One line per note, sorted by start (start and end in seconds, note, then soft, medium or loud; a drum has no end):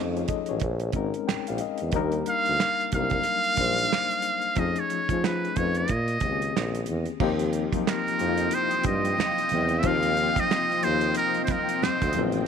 0.00 0.24 F2 medium
0.00 0.62 F3 loud
0.00 0.63 A3 medium
0.00 0.62 C#4 medium
0.00 0.63 D#4 medium
0.00 0.25 F4 medium
0.00 0.17 G#4 loud
0.00 0.16 A4 medium
0.00 0.15 D#5 medium
0.17 0.28 G#4 soft
0.17 0.28 C#5 medium
0.17 closed hi-hat soft
0.28 0.48 A4 medium
0.28 0.48 D#5 medium
0.28 kick medium
0.28 closed hi-hat medium
0.46 0.80 G#4 soft
0.46 0.80 C#5 medium
0.46 closed hi-hat soft
0.51 0.60 A1 medium
0.60 0.89 A#1 medium
0.60 kick medium
0.60 closed hi-hat medium
0.80 closed hi-hat soft
0.92 1.11 G#1 medium
0.92 1.83 G#3 medium
0.92 1.83 C4 medium
0.92 1.84 C#4 medium
0.92 1.84 D#4 medium
0.92 1.85 A#4 medium
0.92 kick medium
0.92 closed hi-hat medium
1.14 closed hi-hat soft
1.28 1.37 A#1 soft
1.28 1.46 G5 medium
1.28 finger snap medium
1.28 snare loud
1.47 1.59 A#1 medium
1.47 1.59 F5 medium
1.47 closed hi-hat soft
1.58 1.91 D#5 medium
1.58 closed hi-hat medium
1.78 closed hi-hat soft
1.82 1.92 E2 medium
1.92 2.21 D#2 medium
1.92 2.01 F3 medium
1.92 2.83 A#3 medium
1.92 2.83 D4 medium
1.92 2.84 D#4 loud
1.92 kick loud
1.92 closed hi-hat medium
1.96 2.86 G3 loud
1.96 2.84 A#4 loud
2.12 closed hi-hat soft
2.26 2.89 F5 loud
2.26 closed hi-hat medium
2.46 2.58 D2 medium
2.46 closed hi-hat soft
2.60 finger snap medium
2.60 snare loud
2.80 closed hi-hat soft
2.91 3.20 C2 medium
2.91 3.00 F#3 soft
2.91 3.52 A#3 medium
2.91 3.53 D4 medium
2.91 3.53 D#4 medium
2.91 3.53 A#4 medium
2.91 4.60 F5 loud
2.91 kick medium
2.91 closed hi-hat medium
2.98 3.55 G3 medium
3.10 kick medium
3.10 closed hi-hat soft
3.24 closed hi-hat medium
3.44 closed hi-hat soft
3.56 3.86 A#1 medium
3.56 4.47 G3 medium
3.56 4.48 A#3 medium
3.56 4.48 D4 medium
3.56 4.48 D#4 medium
3.56 kick medium
3.56 snare soft
3.56 closed hi-hat medium
3.61 4.49 C5 medium
3.78 closed hi-hat soft
3.93 finger snap medium
3.93 snare loud
4.11 closed hi-hat soft
4.22 closed hi-hat medium
4.42 closed hi-hat soft
4.56 4.74 F2 medium
4.56 5.02 F3 medium
4.56 5.03 A3 medium
4.56 5.03 C#4 medium
4.56 5.04 D#4 medium
4.56 5.04 G#4 medium
4.56 4.81 D#5 medium
4.56 kick loud
4.56 closed hi-hat medium
4.76 closed hi-hat soft
4.80 5.26 C#5 medium
4.90 4.99 F3 soft
4.90 closed hi-hat medium
5.09 5.51 F3 medium
5.09 5.48 F3 medium
5.09 5.51 A3 medium
5.09 5.51 C#4 medium
5.09 5.52 D#4 medium
5.09 kick medium
5.09 closed hi-hat soft
5.13 5.53 G#4 medium
5.24 5.58 B4 medium
5.24 finger snap medium
5.24 snare loud
5.45 closed hi-hat soft
5.55 5.84 F2 medium
5.55 5.88 F3 medium
5.55 5.89 A3 medium
5.55 5.89 C#4 medium
5.55 5.90 D#4 medium
5.55 5.90 B4 medium
5.55 5.79 C#5 medium
5.55 kick medium
5.55 closed hi-hat medium
5.75 6.88 D#5 medium
5.75 closed hi-hat soft
5.88 6.17 A#2 medium
5.88 kick medium
5.88 closed hi-hat medium
6.08 closed hi-hat soft
6.20 6.49 C#2 medium
6.20 7.11 D#3 medium
6.20 7.12 A#3 medium
6.20 7.12 C4 medium
6.20 kick medium
6.20 closed hi-hat medium
6.24 7.13 C#4 medium
6.24 6.32 G4 medium
6.32 7.16 G#4 medium
6.42 closed hi-hat soft
6.56 6.83 A#1 medium
6.56 finger snap medium
6.56 snare loud
6.75 closed hi-hat soft
6.86 7.06 E2 medium
6.86 closed hi-hat medium
7.06 closed hi-hat soft
7.20 7.66 D#2 loud
7.20 7.66 F3 loud
7.20 7.67 A#3 loud
7.20 12.48 C4 medium
7.20 7.67 C4 loud
7.20 7.67 D#4 loud
7.20 12.44 F4 medium
7.20 7.68 G4 loud
7.20 12.44 D#5 medium
7.20 12.44 G5 medium
7.20 kick loud
7.20 crash medium
7.20 muted conga soft
7.20 low conga medium
7.39 closed hi-hat medium
7.39 muted conga soft
7.53 closed hi-hat medium
7.72 8.14 F3 medium
7.72 8.15 A#3 medium
7.72 8.15 C4 medium
7.72 8.16 D#4 medium
7.72 kick medium
7.72 closed hi-hat medium
7.72 high conga medium
7.77 8.16 F4 medium
7.87 8.56 A#4 medium
7.87 finger snap medium
7.87 snare loud
8.07 closed hi-hat soft
8.07 muted conga soft
8.19 8.48 F2 medium
8.19 9.39 F3 medium
8.19 9.39 A#3 medium
8.19 9.40 C4 medium
8.19 9.40 D#4 medium
8.19 8.29 E4 medium
8.19 closed hi-hat medium
8.29 9.44 F4 medium
8.37 closed hi-hat soft
8.51 8.86 C5 loud
8.51 closed hi-hat medium
8.51 muted conga soft
8.71 closed hi-hat soft
8.71 muted conga soft
8.84 9.13 G2 medium
8.84 9.81 D#5 medium
8.84 kick medium
8.84 closed hi-hat medium
8.84 high conga medium
9.05 closed hi-hat medium
9.18 finger snap medium
9.18 snare loud
9.18 muted conga soft
9.18 high conga medium
9.38 closed hi-hat medium
9.49 9.80 E2 medium
9.49 closed hi-hat medium
9.49 high conga medium
9.49 low conga medium
9.69 closed hi-hat soft
9.79 9.88 E5 medium
9.79 closed hi-hat medium
9.83 10.29 D#2 medium
9.83 10.73 F3 loud
9.83 10.74 A#3 medium
9.83 10.74 C4 medium
9.83 10.75 D#4 medium
9.83 10.75 F4 loud
9.83 10.41 F5 loud
9.83 kick loud
9.83 low conga medium
10.03 closed hi-hat medium
10.03 muted conga soft
10.17 closed hi-hat medium
10.36 10.86 D#5 loud
10.36 kick medium
10.36 closed hi-hat medium
10.36 high conga medium
10.51 finger snap medium
10.51 snare loud
10.51 muted conga soft
10.71 closed hi-hat soft
10.71 muted conga soft
10.82 11.12 D#2 medium
10.82 12.02 F3 medium
10.82 12.03 A#3 medium
10.82 12.03 C4 medium
10.82 12.04 D#4 medium
10.82 12.04 F4 medium
10.82 11.16 C5 medium
10.82 closed hi-hat medium
11.01 closed hi-hat soft
11.15 11.43 A#4 loud
11.15 closed hi-hat medium
11.34 closed hi-hat soft
11.34 muted conga soft
11.45 11.53 C5 medium
11.45 kick medium
11.45 closed hi-hat medium
11.49 11.85 A#4 medium
11.49 snare soft
11.49 high conga medium
11.69 closed hi-hat soft
11.83 12.23 C5 medium
11.83 finger snap medium
11.83 snare loud
11.83 muted conga soft
11.83 high conga medium
12.02 12.13 D2 medium
12.02 kick medium
12.02 closed hi-hat medium
12.13 12.44 A1 loud
12.13 12.45 F3 medium
12.13 12.45 A#3 medium
12.13 12.45 C4 medium
12.13 closed hi-hat medium
12.13 high conga medium
12.13 low conga medium
12.17 12.46 D#4 medium
12.17 12.47 F4 medium
12.32 closed hi-hat soft